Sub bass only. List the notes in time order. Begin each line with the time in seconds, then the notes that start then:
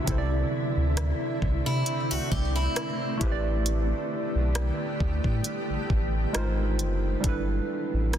0.08 C2
0.77 D2
1.42 C2
1.67 C3
2.11 C2
2.32 C2
3.21 A1
4.35 B1
5.01 D2
5.25 A2
5.70 A1
5.90 A1
6.35 G#1
6.80 F#1
7.24 G1
7.94 A1